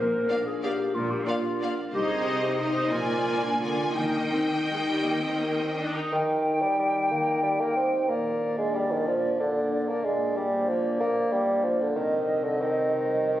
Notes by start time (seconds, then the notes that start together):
Already playing: A#1 A#2 F4
0.00 A#4
0.13 D4
0.29 A#3 F4 D5 F5
0.46 G#4 A#4
0.63 A#3 G4 D5 F5
0.79 A#4
0.94 A#1 A#2 F4
1.09 D4 G4
1.26 A#3 F4 D5 F5
1.44 A#4
1.61 A#3 D5 F5
1.78 A#4
1.93 C2 C3 D#4 G4 C5 D#5
2.08 C4 G#4
2.25 D#4
2.42 G4 D#5
2.59 D#4 C5 D#5
2.76 D#5
2.92 A#1 A#2 A#3 F4 D5 G#5
3.08 G#3
3.25 D4
3.43 D4 A#4
3.60 D3 A#3 F4 G#4 D5 G#5
3.78 A#4
3.95 D#2 D#3 A#3 D#4 D#5 G5
4.14 D#4
4.32 C4 A#4
4.52 A#3 G4
4.71 G#3 D#5
4.89 G3 G4
5.06 D#3 A#3
5.23 C4 D#4
5.41 A#3 A#4
5.59 C4 G4
5.77 D4 D#5
5.95 D#4 G4
6.11 D#3 D#4 G5
6.28 D#4
6.44 A#4
6.61 G3 G4
6.78 G3 D#5
6.95 G4
7.11 D#3 A#3
7.26 D#4
7.42 G3 A#4
7.59 A#3 G4
7.76 C4 D#5
7.92 G4
8.08 A#2 A#3 D5
8.24 A#3
8.41 D4
8.57 G#3 A#4
8.74 G3 D4
8.91 D#3 A#4
9.07 A#2 F3
9.22 A#3
9.39 D3 D4
9.56 A#4
9.73 D4
9.89 A#3 A#4
10.04 A#2 G#3 A#3 D5
10.20 A#3
10.36 G3 D4
10.53 C5
10.69 F3 A#4
10.85 C5
11.00 A#2 A#3
11.32 G3 D4
11.48 C5
11.64 F3 A#4
11.80 D3 C5
11.95 C3 D#3 C4 D#5
12.11 G3
12.27 D#4
12.44 D3 C5
12.60 D#3 G4
12.77 C5
12.92 C3
13.08 G3
13.25 D#4